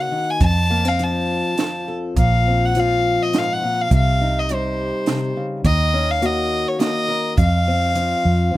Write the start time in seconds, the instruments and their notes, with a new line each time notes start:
Already playing: steel-string acoustic guitar C#3 A#3 D#4 F#4
0.01 violin F#5
0.11 steel-string acoustic guitar D#3
0.30 violin G#5
0.40 steel-string acoustic guitar F2, fingered electric bass F2, violin A5, kick, closed hi-hat
0.70 steel-string acoustic guitar A#3
0.85 steel-string acoustic guitar C4, violin F5
0.99 steel-string acoustic guitar F3 F4, closed hi-hat
1.04 violin A5
1.58 steel-string acoustic guitar F3, snare, closed hi-hat
1.88 steel-string acoustic guitar A4
2.16 fingered electric bass A#1, steel-string acoustic guitar A#2, violin F5, kick, closed hi-hat
2.47 steel-string acoustic guitar C4
2.65 violin F#5
2.75 steel-string acoustic guitar F3 F4, closed hi-hat
2.80 violin F5
3.23 violin D#5
3.33 steel-string acoustic guitar G#2, snare, closed hi-hat
3.38 violin F5
3.53 violin F#5
3.63 steel-string acoustic guitar A#2
3.82 violin F5
3.90 fingered electric bass C2, steel-string acoustic guitar C3, kick, closed hi-hat
3.96 violin F5
4.21 steel-string acoustic guitar D#4
4.39 violin D#5
4.49 steel-string acoustic guitar G3 G4, closed hi-hat
4.54 violin C5
5.06 steel-string acoustic guitar C3, snare, closed hi-hat
5.37 steel-string acoustic guitar C#3
5.65 fingered electric bass D#2, steel-string acoustic guitar D#3, violin D#5, kick, closed hi-hat
5.94 steel-string acoustic guitar C#4
6.11 violin F5
6.22 steel-string acoustic guitar A#3 F#4, violin D#5, closed hi-hat
6.68 violin C#5
6.79 steel-string acoustic guitar A#3, violin D#5, snare, closed hi-hat
7.08 steel-string acoustic guitar A#4
7.38 steel-string acoustic guitar F2, fingered electric bass F2, violin F5, kick, closed hi-hat
7.68 steel-string acoustic guitar C4
7.95 steel-string acoustic guitar F3 F4, closed hi-hat
8.25 fingered electric bass F2
8.54 steel-string acoustic guitar F3